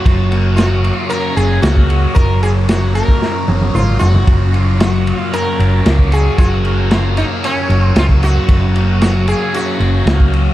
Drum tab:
RD |x-x-x-x-x-x-x-x-|x-x-x-x---------|x-x-x-x-x-x-x-x-|x-x-x-x-x-x-x-x-|
SD |----o-------o---|----o---o-------|----o-------o---|----o-------o-o-|
T1 |----------------|----------oo----|----------------|----------------|
T2 |----------------|------------o---|----------------|----------------|
FT |----------------|--------------oo|----------------|----------------|
BD |o------------o--|o------o--------|o------------o--|o------------o--|

RD |x-x-x-x-x-x-x-x-|
SD |----o-------o---|
T1 |----------------|
T2 |----------------|
FT |----------------|
BD |o------------o--|